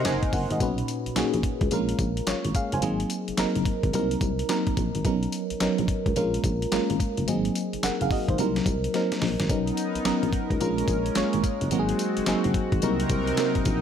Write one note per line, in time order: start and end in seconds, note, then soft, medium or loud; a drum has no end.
0.00 0.60 C3 medium
0.00 0.62 A#3 medium
0.00 0.58 C4 medium
0.00 0.62 C4 medium
0.00 0.60 D#4 medium
0.00 0.62 D#4 medium
0.00 0.53 F#4 medium
0.00 0.60 F#4 medium
0.00 0.60 A#4 medium
0.00 0.07 C5 loud
0.00 0.52 D#5 medium
0.00 0.62 C6 medium
0.05 0.20 F#1 medium
0.05 0.32 C5 medium
0.05 0.32 G#5 medium
0.05 snare loud
0.05 clap medium
0.05 closed hi-hat medium
0.05 tambourine medium
0.23 kick loud
0.23 closed hi-hat medium
0.33 0.47 F#1 loud
0.33 0.50 A#4 medium
0.33 0.50 F#5 medium
0.33 kick loud
0.33 open hi-hat medium
0.33 tambourine medium
0.50 0.59 G#1 loud
0.50 0.61 F#4 medium
0.50 0.78 D#5 medium
0.50 closed hi-hat medium
0.60 0.83 B1 loud
0.60 1.09 A#2 medium
0.60 1.09 C#4 medium
0.60 1.09 D#4 medium
0.60 1.10 F#4 medium
0.60 1.10 B4 medium
0.60 kick loud
0.60 closed hi-hat medium
0.60 tambourine medium
0.78 closed hi-hat medium
0.88 closed hi-hat medium
0.88 tambourine medium
1.06 1.10 A#1 soft
1.06 closed hi-hat medium
1.16 1.23 A#1 soft
1.16 1.64 A#3 medium
1.16 1.65 C#4 medium
1.16 1.65 D#4 medium
1.16 1.65 F#4 medium
1.16 1.65 G#4 medium
1.16 snare loud
1.16 clap medium
1.16 closed hi-hat medium
1.16 tambourine loud
1.34 1.42 A#1 medium
1.34 closed hi-hat medium
1.43 kick medium
1.43 closed hi-hat medium
1.61 1.69 C#2 medium
1.61 kick loud
1.61 closed hi-hat soft
1.71 1.94 A#1 loud
1.71 2.20 G#3 medium
1.71 2.20 A#3 medium
1.71 2.20 C#4 medium
1.71 2.00 F4 medium
1.71 2.00 A#4 loud
1.71 closed hi-hat medium
1.71 tambourine medium
1.89 closed hi-hat medium
1.99 2.21 A#1 loud
1.99 kick loud
1.99 closed hi-hat medium
1.99 tambourine medium
2.17 closed hi-hat medium
2.27 2.34 G#1 medium
2.27 2.54 F4 medium
2.27 2.54 C#5 medium
2.27 snare loud
2.27 clap loud
2.27 closed hi-hat medium
2.27 tambourine loud
2.45 2.53 G#1 medium
2.45 closed hi-hat medium
2.55 2.73 G#4 medium
2.55 2.72 F5 medium
2.55 kick loud
2.55 closed hi-hat medium
2.55 tambourine medium
2.72 2.81 F#1 medium
2.72 3.00 C5 medium
2.72 3.00 G#5 medium
2.72 closed hi-hat medium
2.82 3.05 G#1 loud
2.82 3.31 F#3 medium
2.82 3.31 A#3 medium
2.82 3.31 C4 medium
2.82 3.31 D#4 medium
2.82 3.31 G#4 medium
2.82 closed hi-hat medium
2.82 tambourine medium
3.00 closed hi-hat medium
3.10 closed hi-hat loud
3.10 tambourine medium
3.28 3.33 F#1 soft
3.28 closed hi-hat medium
3.37 3.46 F#1 soft
3.37 3.86 F#3 medium
3.37 3.86 A#3 medium
3.37 3.87 C4 medium
3.37 3.87 D#4 medium
3.37 3.87 A#4 loud
3.37 snare loud
3.37 clap medium
3.37 closed hi-hat medium
3.37 tambourine loud
3.55 3.64 F#1 medium
3.55 closed hi-hat medium
3.65 kick medium
3.65 closed hi-hat medium
3.83 3.92 G#1 medium
3.83 kick loud
3.83 closed hi-hat medium
3.93 4.16 C2 loud
3.93 4.42 F#3 medium
3.93 4.42 A#3 medium
3.93 4.42 C4 medium
3.93 4.43 D#4 medium
3.93 4.43 A#4 loud
3.93 closed hi-hat medium
3.93 tambourine medium
4.11 closed hi-hat medium
4.21 4.44 C2 loud
4.21 kick loud
4.21 closed hi-hat medium
4.21 tambourine medium
4.39 closed hi-hat medium
4.49 4.98 F#3 medium
4.49 4.98 A#3 medium
4.49 4.98 C4 medium
4.49 4.98 D#4 medium
4.49 4.98 A#4 loud
4.49 snare loud
4.49 clap loud
4.49 closed hi-hat medium
4.49 tambourine loud
4.67 kick loud
4.67 closed hi-hat medium
4.77 4.91 A#1 loud
4.77 kick loud
4.77 closed hi-hat medium
4.77 tambourine medium
4.95 5.03 G#1 medium
4.95 closed hi-hat medium
5.05 5.27 B1 loud
5.05 5.53 F#3 medium
5.05 5.53 B3 medium
5.05 5.53 C#4 medium
5.05 5.54 D#4 medium
5.05 5.54 A#4 medium
5.05 kick loud
5.05 closed hi-hat medium
5.05 tambourine medium
5.23 closed hi-hat medium
5.32 closed hi-hat loud
5.32 tambourine medium
5.50 5.55 A#1 soft
5.50 closed hi-hat medium
5.60 5.68 A#1 soft
5.60 6.09 F#3 medium
5.60 6.09 B3 medium
5.60 6.09 C#4 medium
5.60 6.09 D#4 medium
5.60 6.10 A#4 loud
5.60 snare loud
5.60 clap medium
5.60 closed hi-hat medium
5.60 tambourine loud
5.78 5.87 A#1 loud
5.78 closed hi-hat soft
5.88 kick loud
5.88 closed hi-hat medium
6.06 6.14 C#2 medium
6.06 kick loud
6.06 closed hi-hat soft
6.16 6.39 A#1 loud
6.16 6.64 G#3 medium
6.16 6.64 A#3 medium
6.16 6.65 C#4 medium
6.16 6.65 F4 medium
6.16 6.65 A#4 loud
6.16 closed hi-hat medium
6.16 tambourine medium
6.34 closed hi-hat medium
6.44 6.66 A#1 loud
6.44 kick loud
6.44 closed hi-hat medium
6.44 tambourine medium
6.62 closed hi-hat medium
6.72 6.79 G#1 soft
6.72 7.20 G#3 medium
6.72 7.20 A#3 medium
6.72 7.20 C#4 medium
6.72 7.20 F4 medium
6.72 7.20 A#4 medium
6.72 snare loud
6.72 clap medium
6.72 closed hi-hat medium
6.72 tambourine medium
6.90 6.98 G#1 medium
6.90 closed hi-hat medium
7.00 kick loud
7.00 closed hi-hat medium
7.00 tambourine medium
7.17 7.26 F#1 medium
7.17 closed hi-hat medium
7.28 7.50 G#1 loud
7.28 7.76 F#3 medium
7.28 7.76 A#3 medium
7.28 7.76 C4 medium
7.28 7.76 D#4 medium
7.28 7.76 G#4 medium
7.28 closed hi-hat medium
7.28 tambourine medium
7.45 closed hi-hat medium
7.55 closed hi-hat loud
7.55 tambourine medium
7.73 7.77 F#1 soft
7.73 closed hi-hat medium
7.83 7.91 F#1 medium
7.83 8.01 A#4 medium
7.83 8.00 F#5 medium
7.83 snare loud
7.83 clap medium
7.83 closed hi-hat medium
7.83 tambourine loud
8.01 8.09 F#1 medium
8.01 8.11 G#4 medium
8.01 8.11 F5 medium
8.01 closed hi-hat medium
8.11 8.29 F#4 medium
8.11 8.28 D#5 medium
8.11 kick loud
8.11 open hi-hat medium
8.28 8.36 G#1 medium
8.28 8.39 D#4 medium
8.28 8.55 C5 medium
8.28 kick loud
8.28 closed hi-hat medium
8.38 8.61 C2 loud
8.38 8.87 F#3 medium
8.38 8.87 A#3 medium
8.38 8.87 C4 medium
8.38 8.87 D#4 medium
8.38 8.87 A#4 loud
8.38 closed hi-hat medium
8.38 tambourine medium
8.56 snare medium
8.56 closed hi-hat medium
8.66 8.88 C2 loud
8.66 kick loud
8.66 closed hi-hat medium
8.66 tambourine medium
8.84 closed hi-hat medium
8.94 9.42 F#3 medium
8.94 9.42 A#3 medium
8.94 9.43 C4 medium
8.94 9.43 D#4 medium
8.94 9.43 A#4 loud
8.94 snare medium
8.94 closed hi-hat medium
9.12 snare medium
9.12 closed hi-hat medium
9.22 9.36 A#1 loud
9.22 snare loud
9.22 open hi-hat medium
9.40 9.48 G#1 medium
9.40 snare medium
9.40 closed hi-hat medium
9.49 9.72 B1 loud
9.49 9.98 F#3 medium
9.49 10.60 B3 medium
9.49 9.98 B3 medium
9.49 9.98 C#4 medium
9.49 10.60 D#4 medium
9.49 9.98 D#4 medium
9.49 11.70 A#4 medium
9.49 9.98 A#4 medium
9.49 kick loud
9.49 closed hi-hat medium
9.49 tambourine medium
9.67 closed hi-hat medium
9.77 closed hi-hat loud
9.77 tambourine medium
9.95 9.99 A#1 medium
9.95 closed hi-hat medium
10.05 10.12 A#1 medium
10.05 10.53 F#3 medium
10.05 10.53 B3 medium
10.05 10.53 C#4 medium
10.05 10.54 D#4 medium
10.05 10.54 A#4 loud
10.05 snare loud
10.05 clap medium
10.05 closed hi-hat medium
10.05 tambourine loud
10.23 10.31 A#1 medium
10.23 closed hi-hat soft
10.33 kick loud
10.33 closed hi-hat medium
10.50 10.59 C#2 medium
10.50 kick loud
10.50 closed hi-hat medium
10.59 10.83 A#1 loud
10.59 12.80 G#3 medium
10.59 11.09 G#3 medium
10.59 11.09 A#3 medium
10.59 11.70 C#4 medium
10.59 11.09 C#4 medium
10.59 11.09 F4 medium
10.59 11.09 A#4 loud
10.59 closed hi-hat medium
10.59 tambourine medium
10.78 closed hi-hat medium
10.88 11.10 A#1 loud
10.88 kick loud
10.88 closed hi-hat medium
10.88 tambourine medium
11.06 closed hi-hat medium
11.15 11.24 G#1 soft
11.15 11.64 G#3 medium
11.15 11.64 A#3 medium
11.15 11.65 C#4 medium
11.15 11.65 F4 medium
11.15 11.65 C#5 loud
11.15 snare loud
11.15 clap medium
11.15 closed hi-hat medium
11.15 tambourine medium
11.33 11.42 G#1 medium
11.33 closed hi-hat medium
11.44 kick loud
11.44 closed hi-hat medium
11.44 tambourine medium
11.61 11.70 F#1 medium
11.61 closed hi-hat medium
11.71 11.94 G#1 loud
11.71 12.20 F#3 medium
11.71 12.20 A#3 medium
11.71 12.81 C4 medium
11.71 12.20 C4 medium
11.71 12.20 D#4 medium
11.71 13.81 F#4 loud
11.71 11.80 F#4 medium
11.71 closed hi-hat medium
11.71 tambourine medium
11.79 12.24 G#4 loud
11.89 closed hi-hat medium
11.99 closed hi-hat medium
11.99 tambourine medium
12.17 12.22 F#1 medium
12.17 closed hi-hat medium
12.26 12.35 F#1 medium
12.26 12.75 F#3 medium
12.26 12.75 A#3 medium
12.26 12.76 C4 medium
12.26 12.76 D#4 medium
12.26 12.76 G#4 loud
12.26 snare loud
12.26 clap medium
12.26 closed hi-hat medium
12.26 tambourine loud
12.44 12.53 F#1 medium
12.44 closed hi-hat medium
12.54 kick medium
12.54 closed hi-hat medium
12.72 12.81 G#1 medium
12.72 kick loud
12.72 closed hi-hat soft
12.82 13.05 C2 loud
12.82 13.81 C3 medium
12.82 13.31 F#3 medium
12.82 13.31 A#3 medium
12.82 13.81 C4 medium
12.82 13.31 C4 medium
12.82 13.81 D#4 medium
12.82 13.31 D#4 medium
12.82 13.81 A#4 medium
12.82 13.31 A#4 loud
12.82 closed hi-hat medium
12.82 tambourine medium
13.00 closed hi-hat medium
13.09 13.32 C2 loud
13.09 kick medium
13.09 closed hi-hat medium
13.09 tambourine medium
13.27 closed hi-hat medium
13.37 13.81 F#3 loud
13.37 13.81 A#3 medium
13.37 13.81 C4 medium
13.37 13.81 D#4 medium
13.37 13.81 A#4 medium
13.37 snare loud
13.37 clap loud
13.37 closed hi-hat medium
13.37 tambourine medium
13.55 kick loud
13.55 closed hi-hat medium
13.65 13.80 A#1 loud
13.65 kick loud
13.65 closed hi-hat medium
13.65 tambourine medium